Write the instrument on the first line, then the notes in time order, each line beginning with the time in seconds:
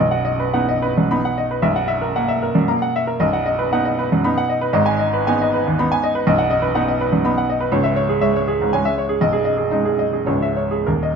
grand piano
Already playing: B1
0.00 B0 D#5
0.11 F#5
0.25 D#5
0.40 B4
0.54 B3 D#4 F#5
0.69 D#5
0.82 B4
0.98 F#2
1.11 B3 D#4 B5
1.25 F#5
1.38 D#5
1.51 B4
1.62 B0 B1 E5
1.76 F#5
1.88 E5
2.02 A#4
2.16 A#3 F#5
2.28 E5
2.43 A#4
2.55 F#2
2.68 A#3 A#5
2.82 F#5
2.96 E5
3.07 A#4
3.20 B0 B1 D#5
3.33 F#5
3.46 D#5
3.59 B4
3.72 B3 D#4 F#5
3.85 D#5
3.99 B4
4.12 F#2
4.24 B3 D#4 B5
4.38 F#5
4.49 D#5
4.61 B4
4.73 G#1 G#2 D#5
4.86 G#5
4.99 D#5
5.13 B4
5.27 B3 D#4 G#5
5.42 D#5
5.53 B4
5.67 D#2
5.79 B3 D#4 B5
5.92 G#5
6.04 D#5
6.15 B4
6.27 B0 B1 D#5
6.38 F#5
6.50 D#5
6.62 B4
6.75 B3 D#4 F#5
6.88 D#5
7.01 B4
7.13 F#2
7.25 B3 D#4 B5
7.38 F#5
7.50 D#5
7.61 B4
7.72 C#1 C#2 C#5
7.84 E5
7.96 C#5
8.09 G#4
8.21 G#3 C#4 E5
8.36 C#5
8.48 G#4
8.62 G#2
8.73 G#3 C#4 G#5
8.85 E5
8.98 C#5
9.09 G#4
9.21 B0 B1 D#5
9.33 G#4
9.45 D#5
9.57 G#4
9.71 G#3 D#4 D#5
9.85 G#4
9.99 D#5
10.13 G#4
10.26 C#1 C#2 G#3 C#4 C#5
10.42 E5
10.57 C#5
10.71 G#4
10.86 D#1 D#2 A#4
11.03 D#5